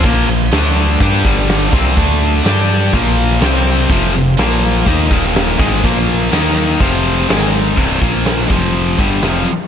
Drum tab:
CC |x---------------|----------------|----------------|----------------|
HH |----o---o---o---|o---o---o---o---|o---o---o---o---|o---o---o---o---|
SD |---oo------oo---|----o------oo---|----o------oo---|----o------oo---|
BD |o-------o-o---o-|o-------o-------|o-------o-o---o-|o-------o-------|

CC |x---------------|
HH |----o---o---o---|
SD |----o-------o---|
BD |o-o---o---o-----|